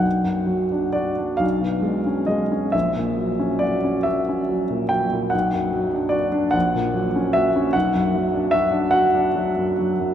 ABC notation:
X:1
M:12/8
L:1/16
Q:3/8=47
K:F#phr
V:1 name="Grand piano"
f4 d2 ^e4 ^d2 =e4 =d2 e4 g2 | f4 d2 f4 e2 f4 e2 f6 |]
V:2 name="Grand piano" clef=bass
B,,, F,, F, D F D B,,, B,, ^G, C G, C ^A,,, ^A,, F, C F C F C F, A,, F, A,, | B,,, F,, F, D F D ^A,,, ^A,, F, C F C B,,, F,, F, D F D F D F, F,, F, F,, |]